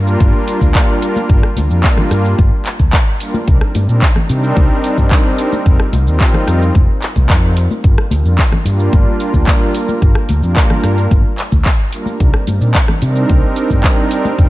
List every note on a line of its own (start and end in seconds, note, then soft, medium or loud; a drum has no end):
0.00 0.15 G2 medium
0.00 0.98 G3 medium
0.00 0.99 A#3 medium
0.00 0.99 D4 medium
0.00 0.99 F4 medium
0.00 0.99 A#4 medium
0.07 shaker soft
0.20 0.31 G1 medium
0.20 kick loud
0.20 high conga medium
0.20 shaker soft
0.48 open hi-hat loud
0.48 shaker medium
0.61 0.72 D2 loud
0.61 kick medium
0.61 high conga medium
0.61 shaker soft
0.75 kick loud
0.75 clap loud
0.75 shaker soft
1.02 1.15 G3 medium
1.02 1.15 A#3 medium
1.02 1.15 D4 medium
1.02 1.15 F4 medium
1.02 1.16 A#4 medium
1.02 open hi-hat loud
1.02 shaker medium
1.16 high conga medium
1.16 shaker soft
1.29 1.40 G1 medium
1.29 1.37 G3 loud
1.29 1.37 A#3 medium
1.29 1.38 D4 medium
1.29 1.38 F4 medium
1.29 1.38 A#4 loud
1.29 kick loud
1.29 shaker soft
1.43 cross-stick medium
1.56 1.67 D2 medium
1.56 open hi-hat loud
1.56 high conga medium
1.56 shaker medium
1.70 1.81 F2 medium
1.70 2.08 G3 medium
1.70 2.08 A#3 medium
1.70 2.08 D4 medium
1.70 2.08 F4 medium
1.70 2.08 A#4 medium
1.70 shaker soft
1.84 kick loud
1.84 clap loud
1.84 shaker soft
1.97 cross-stick medium
1.97 high conga medium
1.97 low conga medium
2.11 2.33 G2 medium
2.11 2.24 G3 medium
2.11 2.24 A#3 medium
2.11 2.24 D4 medium
2.11 2.25 F4 medium
2.11 2.25 A#4 medium
2.11 cross-stick medium
2.11 open hi-hat loud
2.11 shaker medium
2.25 shaker soft
2.39 2.49 G1 medium
2.39 kick loud
2.39 high conga loud
2.39 shaker soft
2.66 clap medium
2.66 open hi-hat loud
2.66 shaker medium
2.79 2.90 D2 medium
2.79 kick medium
2.79 high conga medium
2.79 shaker soft
2.93 kick loud
2.93 clap loud
2.93 shaker soft
3.20 3.33 G3 medium
3.20 3.33 A#3 medium
3.20 3.33 D4 medium
3.20 3.34 F4 medium
3.20 3.34 A#4 medium
3.20 open hi-hat loud
3.20 shaker medium
3.34 high conga medium
3.34 shaker soft
3.47 3.58 C2 medium
3.47 3.56 G3 medium
3.47 3.56 C4 medium
3.47 3.56 D4 medium
3.47 3.56 D#4 medium
3.47 3.56 A#4 loud
3.47 kick loud
3.47 shaker soft
3.61 cross-stick medium
3.75 3.86 G2 medium
3.75 open hi-hat loud
3.75 high conga medium
3.75 shaker medium
3.88 3.99 A#2 medium
3.88 3.96 G3 medium
3.88 3.96 C4 medium
3.88 3.97 D4 medium
3.88 3.97 D#4 medium
3.88 3.97 A#4 medium
3.88 shaker soft
4.02 kick loud
4.02 clap loud
4.02 shaker soft
4.16 cross-stick medium
4.16 high conga medium
4.16 low conga medium
4.29 4.51 C3 medium
4.29 5.35 G3 medium
4.29 5.35 C4 medium
4.29 5.35 D4 medium
4.29 5.35 D#4 medium
4.29 5.36 A#4 medium
4.29 open hi-hat loud
4.29 shaker medium
4.44 shaker soft
4.57 4.68 C2 loud
4.57 kick loud
4.57 high conga loud
4.57 shaker soft
4.84 open hi-hat loud
4.84 shaker medium
4.98 5.08 G2 medium
4.98 kick medium
4.98 high conga medium
4.98 shaker soft
5.11 kick loud
5.11 clap loud
5.11 shaker soft
5.38 5.51 G3 medium
5.38 5.51 C4 medium
5.38 5.52 D4 medium
5.38 5.52 D#4 medium
5.38 5.52 A#4 medium
5.38 open hi-hat loud
5.38 shaker medium
5.53 high conga medium
5.53 shaker soft
5.65 5.77 F1 medium
5.65 5.74 G3 loud
5.65 5.74 C4 medium
5.65 5.74 D#4 medium
5.65 5.74 F4 medium
5.65 5.74 A#4 loud
5.65 kick loud
5.65 shaker soft
5.80 cross-stick medium
5.93 6.04 C2 medium
5.93 open hi-hat loud
5.93 high conga medium
5.93 shaker medium
6.06 6.18 D#2 medium
6.06 6.44 G3 medium
6.06 6.44 C4 medium
6.06 6.44 D#4 medium
6.06 6.44 F4 medium
6.06 6.45 A#4 medium
6.06 shaker soft
6.20 kick loud
6.20 clap loud
6.20 shaker soft
6.33 cross-stick medium
6.33 high conga medium
6.33 low conga medium
6.47 6.69 F2 medium
6.47 6.60 G3 medium
6.47 6.61 C4 medium
6.47 6.61 D#4 medium
6.47 6.61 F4 medium
6.47 6.61 A#4 medium
6.47 cross-stick medium
6.47 open hi-hat loud
6.47 shaker medium
6.62 shaker soft
6.75 6.86 F1 medium
6.75 kick loud
6.75 high conga loud
6.75 shaker soft
7.02 clap medium
7.02 open hi-hat loud
7.02 shaker medium
7.15 7.27 C2 loud
7.15 7.29 G3 medium
7.15 7.29 C4 medium
7.15 7.29 D#4 medium
7.15 7.29 F4 medium
7.15 7.29 A#4 loud
7.15 kick medium
7.15 high conga medium
7.15 shaker soft
7.30 7.66 F2 medium
7.30 kick loud
7.30 clap loud
7.30 shaker soft
7.43 7.51 G3 medium
7.43 7.51 C4 medium
7.43 7.51 D#4 medium
7.43 7.51 F4 medium
7.43 7.52 A#4 medium
7.57 open hi-hat loud
7.57 shaker medium
7.71 high conga medium
7.71 shaker soft
7.84 7.95 G1 medium
7.84 7.92 G3 loud
7.84 7.92 A#3 medium
7.84 7.92 D4 medium
7.84 7.92 F4 medium
7.84 7.92 A#4 loud
7.84 kick loud
7.84 cabasa soft
7.84 shaker soft
7.98 cross-stick medium
8.11 8.22 D2 medium
8.11 open hi-hat loud
8.11 high conga medium
8.11 cabasa medium
8.11 shaker medium
8.24 8.35 F2 medium
8.24 8.33 G3 medium
8.24 8.33 A#3 medium
8.24 8.33 D4 medium
8.24 8.33 F4 medium
8.24 8.33 A#4 medium
8.24 cabasa medium
8.24 shaker soft
8.38 kick loud
8.38 clap loud
8.38 cabasa soft
8.38 shaker soft
8.52 cross-stick medium
8.52 high conga medium
8.52 low conga medium
8.65 8.87 G2 medium
8.65 9.71 G3 medium
8.65 9.71 A#3 medium
8.65 9.72 D4 medium
8.65 9.72 F4 medium
8.65 9.72 A#4 medium
8.65 open hi-hat loud
8.65 cabasa medium
8.65 shaker medium
8.79 cabasa soft
8.79 shaker soft
8.93 9.04 G1 medium
8.93 kick loud
8.93 high conga medium
8.93 cabasa soft
8.93 shaker soft
9.20 open hi-hat loud
9.20 cabasa medium
9.20 shaker medium
9.34 9.45 D2 loud
9.34 kick medium
9.34 high conga medium
9.34 cabasa soft
9.34 shaker soft
9.47 kick loud
9.47 clap loud
9.47 cabasa soft
9.47 shaker soft
9.74 9.88 G3 medium
9.74 9.88 A#3 medium
9.74 9.88 D4 medium
9.74 9.88 F4 medium
9.74 9.88 A#4 medium
9.74 open hi-hat loud
9.74 cabasa medium
9.74 shaker medium
9.88 high conga medium
9.88 cabasa soft
9.88 shaker soft
10.01 10.13 G1 medium
10.01 10.10 G3 loud
10.01 10.10 A#3 medium
10.01 10.10 D4 medium
10.01 10.10 F4 medium
10.01 10.11 A#4 loud
10.01 kick loud
10.01 cabasa soft
10.01 shaker soft
10.15 cross-stick medium
10.29 10.40 D2 medium
10.29 open hi-hat medium
10.29 high conga medium
10.29 cabasa medium
10.29 shaker medium
10.42 10.54 F2 medium
10.42 10.80 G3 medium
10.42 10.80 A#3 medium
10.42 10.81 D4 medium
10.42 10.81 F4 medium
10.42 10.81 A#4 medium
10.42 cabasa soft
10.42 shaker soft
10.56 kick loud
10.56 clap loud
10.56 cabasa soft
10.56 shaker soft
10.70 cross-stick medium
10.70 high conga medium
10.70 low conga medium
10.83 11.05 G2 medium
10.83 10.97 G3 medium
10.83 10.97 A#3 medium
10.83 10.97 D4 medium
10.83 10.97 F4 medium
10.83 10.97 A#4 medium
10.83 cross-stick medium
10.83 open hi-hat medium
10.83 cabasa medium
10.83 shaker medium
10.97 cabasa soft
10.97 shaker soft
11.11 11.22 G1 medium
11.11 kick loud
11.11 high conga medium
11.11 cabasa soft
11.11 shaker soft
11.38 clap medium
11.38 open hi-hat medium
11.38 cabasa medium
11.38 shaker medium
11.52 11.63 D2 medium
11.52 kick medium
11.52 high conga medium
11.52 cabasa soft
11.52 shaker soft
11.65 kick loud
11.65 clap loud
11.65 cabasa soft
11.65 shaker soft
11.93 12.06 G3 medium
11.93 12.06 A#3 medium
11.93 12.06 D4 medium
11.93 12.06 F4 medium
11.93 12.06 A#4 loud
11.93 open hi-hat loud
11.93 cabasa medium
11.93 shaker medium
12.06 high conga medium
12.06 cabasa medium
12.06 shaker soft
12.20 12.31 C2 medium
12.20 12.28 G3 loud
12.20 12.28 C4 medium
12.20 12.28 D4 medium
12.20 12.29 D#4 medium
12.20 12.29 A#4 loud
12.20 kick loud
12.20 cabasa soft
12.20 shaker soft
12.34 cross-stick medium
12.47 12.58 G2 medium
12.47 open hi-hat loud
12.47 high conga medium
12.47 cabasa medium
12.47 shaker medium
12.61 12.72 A#2 medium
12.61 12.69 G3 medium
12.61 12.69 C4 medium
12.61 12.69 D4 medium
12.61 12.70 D#4 medium
12.61 12.70 A#4 medium
12.61 cabasa medium
12.61 shaker soft
12.75 kick loud
12.75 clap loud
12.75 cabasa soft
12.75 shaker soft
12.88 cross-stick medium
12.88 high conga medium
12.88 low conga medium
13.01 13.24 C3 medium
13.01 14.07 G3 medium
13.01 14.08 C4 medium
13.01 14.08 D4 medium
13.01 14.08 D#4 medium
13.01 14.08 A#4 medium
13.01 open hi-hat medium
13.01 cabasa loud
13.01 shaker medium
13.16 cabasa medium
13.16 shaker soft
13.29 13.40 C2 medium
13.29 kick loud
13.29 high conga medium
13.29 cabasa soft
13.29 shaker soft
13.56 open hi-hat medium
13.56 cabasa medium
13.56 shaker medium
13.70 13.81 G2 loud
13.70 kick medium
13.70 high conga medium
13.70 cabasa medium
13.70 shaker soft
13.84 kick loud
13.84 clap loud
13.84 cabasa soft
13.84 shaker soft
14.11 14.24 G3 medium
14.11 14.24 C4 medium
14.11 14.24 D4 medium
14.11 14.25 D#4 medium
14.11 14.25 A#4 medium
14.11 open hi-hat loud
14.11 cabasa medium
14.11 shaker medium
14.24 high conga medium
14.24 cabasa medium
14.24 shaker soft
14.38 14.49 F1 medium
14.38 14.47 G3 loud
14.38 14.47 C4 medium
14.38 14.47 D#4 medium
14.38 14.47 F4 medium
14.38 14.47 A#4 loud
14.38 kick loud
14.38 cabasa soft
14.38 shaker soft